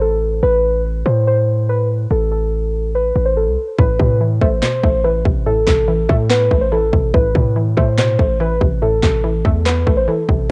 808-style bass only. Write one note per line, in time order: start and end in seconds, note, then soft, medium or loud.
0.00 0.40 A1 loud
0.43 1.03 A1 loud
1.06 2.07 A2 loud
2.11 3.12 A1 loud
3.16 3.48 A1 loud
3.47 3.57 C2 loud
3.78 3.99 A1 loud
3.99 4.40 A2 loud
4.41 4.62 A1 loud
4.83 5.24 A1 loud
5.25 5.66 A1 loud
5.67 6.08 A1 loud
6.09 6.50 A2 loud
6.51 6.92 A1 loud
6.93 7.13 A1 loud
7.14 7.34 A1 loud
7.35 7.75 A2 loud
7.77 8.17 A2 loud
8.19 8.59 A1 loud
8.61 9.01 A1 loud
9.03 9.43 A1 loud
9.45 9.85 E2 loud
9.87 10.07 A1 loud
10.29 10.49 A1 loud